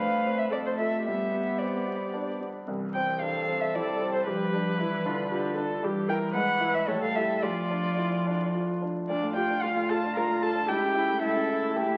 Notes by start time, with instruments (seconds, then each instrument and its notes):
Already playing: grand piano A2 C4, viola B4
0.00 cello A3, grand piano D4, violin F5
0.26 grand piano C4
0.39 violin E5
0.50 grand piano F2, cello A3, viola A4, violin D5
0.66 violin C5
0.78 grand piano F4 A4, violin E5
1.05 grand piano G2, cello B3, viola G4, violin E5
1.32 grand piano B3
1.59 grand piano C4, violin D5
1.87 grand piano B3
2.14 grand piano D4
2.40 grand piano B3
2.68 grand piano C2, cello E3
2.95 grand piano C4, violin G5
3.21 grand piano D4, viola A4, violin F5
3.48 grand piano C4
3.61 violin E5
3.74 cello G3, grand piano E4, violin D5
4.01 grand piano C4
4.14 violin C5
4.27 grand piano G2, cello F3, viola G4, violin B4
4.53 grand piano D4
4.79 cello E3, viola E4, grand piano E4
5.05 cello D3, grand piano D4, viola F4
5.31 cello D3, grand piano F4, viola G4
5.57 grand piano D4, viola A4
5.83 grand piano G2, cello E3, viola G4
6.08 grand piano E4 A#4, viola A#4, violin G5
6.34 grand piano G#2, cello E3, viola B4, violin F#5
6.61 grand piano E4 B4
6.75 violin E5
6.88 grand piano A2, cello G3, viola A4, violin C#5
7.04 violin F5
7.15 grand piano E4 G4, violin E5
7.43 grand piano D2, cello F3, viola F4, violin D5
7.70 grand piano D4
7.98 grand piano E4
8.27 grand piano D4
8.54 grand piano F4
8.82 grand piano D4
9.09 grand piano D2, viola D4, cello F4, violin D5
9.23 grand piano A2
9.36 grand piano F4, viola G4, violin G5
9.50 grand piano D4
9.62 grand piano D2, viola F4, violin F5
9.77 grand piano A2
9.89 grand piano F4, viola A4, violin A5
10.04 grand piano D4
10.16 grand piano D2, viola A#4, violin A#5
10.29 grand piano A2
10.42 grand piano F4, viola A4, violin A5
10.55 grand piano D4
10.69 grand piano C#2, cello E4, viola G4, violin G5
10.82 grand piano C#3
10.95 grand piano E4, cello E4
11.09 grand piano A3
11.22 grand piano C#2, viola E4, cello A4, violin E5
11.35 grand piano C#3
11.49 grand piano E4
11.62 grand piano A3
11.76 grand piano D2, cello G4
11.88 grand piano A2